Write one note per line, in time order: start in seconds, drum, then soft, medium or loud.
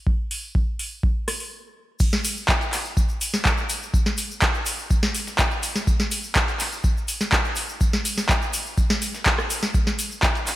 0.07 kick loud
0.31 open hi-hat medium
0.55 kick loud
0.79 open hi-hat loud
1.03 kick loud
1.28 cross-stick medium
1.28 open hi-hat loud
1.40 open hi-hat medium
2.00 kick loud
2.00 tambourine medium
2.00 crash loud
2.00 shaker medium
2.13 snare medium
2.13 shaker soft
2.24 open hi-hat loud
2.24 tambourine medium
2.24 shaker loud
2.37 shaker soft
2.49 kick loud
2.49 snare loud
2.49 clap loud
2.49 tambourine medium
2.49 shaker soft
2.61 closed hi-hat soft
2.61 shaker soft
2.73 clap soft
2.73 open hi-hat medium
2.73 open hi-hat loud
2.73 shaker medium
2.85 shaker soft
2.97 kick loud
2.97 tambourine medium
2.97 shaker medium
3.09 shaker soft
3.21 open hi-hat loud
3.21 tambourine medium
3.21 shaker loud
3.34 snare medium
3.34 shaker soft
3.45 kick loud
3.45 snare loud
3.45 clap loud
3.45 tambourine medium
3.45 shaker medium
3.57 shaker soft
3.69 open hi-hat loud
3.69 tambourine medium
3.69 shaker medium
3.82 shaker soft
3.94 kick loud
3.94 tambourine medium
3.94 shaker medium
4.06 snare medium
4.06 shaker soft
4.18 open hi-hat loud
4.18 tambourine medium
4.18 shaker loud
4.31 shaker soft
4.41 kick loud
4.41 snare loud
4.41 clap loud
4.41 tambourine medium
4.41 shaker medium
4.54 shaker soft
4.66 open hi-hat loud
4.66 tambourine medium
4.66 shaker loud
4.79 shaker soft
4.90 kick loud
4.90 tambourine medium
4.90 shaker medium
5.03 snare medium
5.03 shaker soft
5.15 open hi-hat loud
5.15 tambourine medium
5.15 shaker medium
5.27 snare soft
5.27 shaker soft
5.39 kick loud
5.39 snare loud
5.39 clap loud
5.39 tambourine medium
5.39 shaker medium
5.51 shaker soft
5.63 open hi-hat loud
5.63 tambourine medium
5.63 shaker medium
5.76 snare medium
5.76 snare soft
5.76 shaker soft
5.87 kick loud
5.87 tambourine medium
5.87 shaker medium
6.00 snare medium
6.00 shaker soft
6.11 open hi-hat loud
6.11 tambourine medium
6.11 shaker loud
6.23 shaker soft
6.35 kick loud
6.35 snare loud
6.35 clap loud
6.35 tambourine medium
6.35 shaker medium
6.48 closed hi-hat soft
6.48 shaker soft
6.60 clap soft
6.60 open hi-hat loud
6.60 open hi-hat medium
6.60 shaker loud
6.72 shaker soft
6.84 kick loud
6.84 tambourine medium
6.84 shaker soft
6.97 shaker soft
7.08 open hi-hat loud
7.08 tambourine medium
7.08 shaker loud
7.21 snare medium
7.21 shaker soft
7.32 kick loud
7.32 snare loud
7.32 clap loud
7.32 tambourine medium
7.32 shaker medium
7.45 shaker soft
7.55 open hi-hat loud
7.55 tambourine medium
7.55 shaker medium
7.69 shaker soft
7.81 kick loud
7.81 tambourine medium
7.81 shaker medium
7.93 snare medium
7.93 shaker soft
8.05 open hi-hat loud
8.05 tambourine medium
8.05 shaker medium
8.18 snare medium
8.18 shaker soft
8.29 kick loud
8.29 snare loud
8.29 clap loud
8.29 tambourine medium
8.29 shaker medium
8.42 shaker soft
8.53 open hi-hat loud
8.53 tambourine medium
8.53 shaker loud
8.66 shaker soft
8.77 kick loud
8.77 tambourine medium
8.77 shaker medium
8.90 snare medium
8.90 shaker soft
9.02 open hi-hat loud
9.02 tambourine medium
9.02 shaker loud
9.14 snare soft
9.14 shaker soft
9.25 kick loud
9.25 snare loud
9.25 clap loud
9.25 tambourine medium
9.25 shaker medium
9.38 cross-stick medium
9.38 shaker soft
9.50 open hi-hat loud
9.50 tambourine medium
9.50 shaker medium
9.62 snare medium
9.62 snare soft
9.62 shaker soft
9.74 kick loud
9.74 tambourine medium
9.74 shaker medium
9.87 snare medium
9.87 shaker soft
9.99 open hi-hat loud
9.99 tambourine medium
9.99 shaker loud
10.11 shaker soft
10.23 kick loud
10.23 snare loud
10.23 clap loud
10.23 tambourine medium
10.23 shaker medium
10.35 closed hi-hat soft
10.35 shaker soft
10.47 clap soft
10.47 open hi-hat loud
10.47 open hi-hat medium
10.47 shaker medium